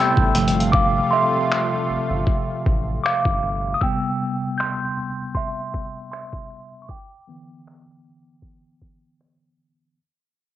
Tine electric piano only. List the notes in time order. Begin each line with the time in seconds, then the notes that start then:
Already playing: C3 G3 B3 G5 B5 C6 E6 G6 A6
0.35 C3 F3 A3
0.72 F5 D6
1.11 E5 C6
3.04 F5 D6
3.74 D#6
3.81 C3 G3 B3 G5 E6
4.58 C6 G6
5.35 E5 C6
6.12 E5 C6
6.82 C#6
6.89 G5 D6
7.27 D3 E3 B3